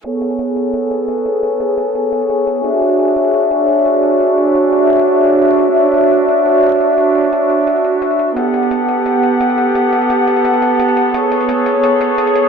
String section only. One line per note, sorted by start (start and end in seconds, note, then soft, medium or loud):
0.04 2.62 B3 medium
0.04 5.55 G#4 medium
0.04 2.62 A4 medium
0.04 8.33 C#5 medium
2.65 8.33 D4 medium
2.65 8.33 F#4 medium
2.65 8.33 E5 medium
8.36 12.49 B3 medium
8.36 11.11 G4 medium
8.36 12.49 A4 medium
8.36 11.11 F#5 medium
11.14 12.49 G#4 medium
11.14 12.49 C#5 medium